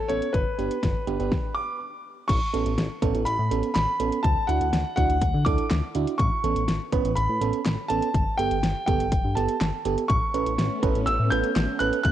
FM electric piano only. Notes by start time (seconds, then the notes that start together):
0.10 B3 C#4 A4
0.58 B3 D4 G4
1.07 B3 D4 G4
1.19 B3 D4 G4
2.54 B3 C#4 A4
3.02 B3 C#4 A4
3.51 B3 C#4 A4
4.00 B3 C#4 A4
4.49 D4 E4 F#4
4.97 D4 E4 F#4
5.46 D4 E4 A4
5.95 D4 E4 F#4
6.44 B3 C#4 A4
6.93 B3 C#4 B4
7.41 B3 C#4 A4
7.90 B3 C#4 A4
8.39 B3 G4 A4
8.88 B3 G4 A4
9.37 B3 G4 A4
9.85 B3 G4 A4
10.34 C#4 A4 B4
10.83 C#4 A4 B4
11.32 C#4 A4 B4
11.80 C#4 A4 B4